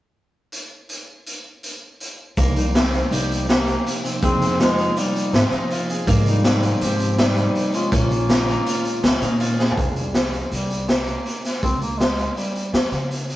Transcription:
0.52 closed hi-hat
0.89 closed hi-hat
1.26 closed hi-hat
1.63 closed hi-hat
2.00 closed hi-hat
2.37 upright bass C2, tine electric piano C3 F3 A#3 D#4, guzheng A#3, kick, closed hi-hat, shaker
2.55 bass clarinet G3, alto saxophone D#4, closed hi-hat, shaker
2.67 bass clarinet G3, alto saxophone D#4
2.73 bass clarinet F3, alto saxophone C4, guzheng C4, snare, closed hi-hat
2.93 closed hi-hat
3.10 upright bass C2, bass clarinet G3, alto saxophone D#4, guzheng G4, closed hi-hat, shaker
3.31 closed hi-hat, shaker
3.48 bass clarinet A#3, guzheng A#3, alto saxophone G4, snare, closed hi-hat
3.67 closed hi-hat, shaker
3.86 closed hi-hat
4.04 tine electric piano C3 F3 A#3 D#4, guzheng C4, closed hi-hat
4.22 upright bass F2, tine electric piano C3 F3 A#3 D#4, guzheng C4, bass clarinet C4, alto saxophone G#4, kick, closed hi-hat, shaker
4.41 snare, closed hi-hat, shaker
4.60 bass clarinet G#3, guzheng D#4, alto saxophone F4, snare, closed hi-hat
4.78 guzheng D#4, closed hi-hat
4.96 bass clarinet G3, alto saxophone D#4, guzheng F4, closed hi-hat, shaker
5.15 closed hi-hat, shaker
5.33 upright bass G#2, bass clarinet F3, guzheng C4, alto saxophone C4, snare, closed hi-hat
5.52 upright bass F3, guzheng D#4, closed hi-hat, shaker
5.70 guzheng F4, closed hi-hat
5.89 guzheng G#4, closed hi-hat
6.07 upright bass G#2, tine electric piano C3 F3 A#3 D#4, guzheng A#3, kick, closed hi-hat, shaker
6.26 bass clarinet G3, alto saxophone D#4, closed hi-hat, shaker
6.44 guzheng C4, snare, closed hi-hat
6.63 closed hi-hat
6.81 upright bass G#2, bass clarinet F3, alto saxophone C4, guzheng G4, closed hi-hat, shaker
6.99 closed hi-hat, shaker
7.18 bass clarinet G3, guzheng C4, alto saxophone D#4, snare, closed hi-hat
7.37 closed hi-hat, shaker
7.55 closed hi-hat
7.73 bass clarinet G#3, guzheng C#4, alto saxophone F4, closed hi-hat
7.92 upright bass A#1, tine electric piano A#2 D#3 G#3 C#4, bass clarinet A#3, guzheng C#4, alto saxophone F4, kick, closed hi-hat, shaker
8.11 closed hi-hat
8.29 guzheng D#4, snare, closed hi-hat
8.48 guzheng D#4, closed hi-hat
8.66 guzheng F4, closed hi-hat, shaker
8.85 closed hi-hat, shaker
9.03 upright bass C#2, guzheng C#4, snare, closed hi-hat, shaker
9.21 upright bass A#2, guzheng D#4, closed hi-hat, shaker
9.40 guzheng F4, closed hi-hat
9.59 guzheng G#4, snare, shaker
9.71 floor tom
9.77 upright bass C2, kick, closed hi-hat
9.96 bass clarinet G3, closed hi-hat
10.14 bass clarinet F3, snare, closed hi-hat
10.33 closed hi-hat
10.51 upright bass C2, bass clarinet G3, closed hi-hat
10.70 closed hi-hat
10.88 bass clarinet A#3, snare, closed hi-hat
11.07 closed hi-hat
11.26 closed hi-hat
11.44 snare, closed hi-hat
11.63 upright bass C#2, bass clarinet C4, kick, closed hi-hat
11.81 bass clarinet A#3, closed hi-hat
11.98 bass clarinet G#3, snare, closed hi-hat
12.18 closed hi-hat
12.36 bass clarinet G3, closed hi-hat
12.55 closed hi-hat
12.73 upright bass F2, bass clarinet F3, snare, closed hi-hat
12.92 upright bass C#3, closed hi-hat
13.11 closed hi-hat
13.29 closed hi-hat

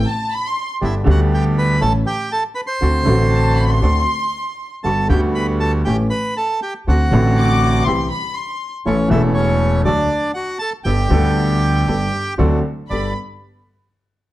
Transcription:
0.07 violin section A5
0.32 violin section B5
0.46 violin section C6
0.81 grand piano G1 G2 D3 G3 B3 G4, upright bass G1, bandoneon B3 D4 E4 G4
0.85 bandoneon E5
1.04 grand piano D2 D3 G3 B3 G4, upright bass D2, bandoneon B3 D4 G4
1.10 bandoneon F#4 F#5
1.34 bandoneon G4 G5
1.58 bandoneon B4 B5
1.80 upright bass A1, grand piano A1 A2 E3 A3 C#4 A4, bandoneon C#4 E4 A4 A5
2.06 bandoneon G4 G5
2.32 bandoneon A4 A5
2.55 bandoneon B4 B5
2.67 bandoneon C5 C6
2.81 grand piano D2 D3 A3 C4 F#4, upright bass D2, bandoneon C4 D4 F#4
3.03 grand piano A1 A2 D3 A3 C4, upright bass A1, bandoneon C4 D4 F#4
3.08 grand piano F#4
3.31 violin section A5
3.57 violin section B5
3.69 violin section C6
3.82 grand piano D2 D3 A3 C4 F#4, upright bass D2, bandoneon C4 D4 F#4
4.84 grand piano G1 G2 D3 G3 B3 F#4, upright bass G1, bandoneon G3 B3 F#4 A4 A5
5.08 grand piano D2 D3 G3 B3 F#4, upright bass D2, bandoneon G3 B3 F#4 G4 G5
5.35 bandoneon B4 B5
5.60 bandoneon A4 A5
5.85 grand piano A1 A2 E3 A3 C#4 G4, upright bass A1, bandoneon A3 C#4 G4 G5
6.10 bandoneon B4 B5
6.37 bandoneon A4 A5
6.62 bandoneon G4 G5
6.87 grand piano D2 D3 A3 C4 F#4, upright bass D2, bandoneon C4 D4 F#4 F#5
7.11 upright bass A1, grand piano A1 A2 D3 A3 C4, bandoneon C4 D4 F#4
7.15 grand piano F#4
7.38 violin section D6
7.86 grand piano C2 C3 E3 G3 C4 G4, upright bass C2, bandoneon C4 E4 G4, violin section C6
8.11 violin section B5
8.34 violin section C6
8.85 grand piano A1 A2 E3 A3 C#4 A4, upright bass A1, bandoneon C#4 E4 A4 C#5
9.08 grand piano E1 E2 E3 A3 C#4, upright bass E1, bandoneon C#4 E4 A4 E5
9.12 grand piano A4
9.34 bandoneon C#4 C#5
9.85 grand piano D2 D3 F#3 A3 D4 A4, upright bass D2, bandoneon D4 F#4 A4 D5
10.34 bandoneon F#4 F#5
10.59 bandoneon A4 A5
10.84 upright bass G1, grand piano G1 G2 G3 B3 D4 A4, bandoneon B3 G4 A4 G5
11.08 grand piano D2 D3 G3 B3 D4, upright bass D2, bandoneon B3 G4 A4
11.12 grand piano A4
11.86 upright bass G1, grand piano G1 G2 G3 B3 D4 A4, bandoneon B3 G4 A4
12.38 grand piano D2 D3 F#3 C4 D4 A4, upright bass D2, bandoneon D4 F#4 C5
12.90 upright bass G1, grand piano G2 B3 G4 A4, bandoneon B3 G4 A4 D5, violin section B5

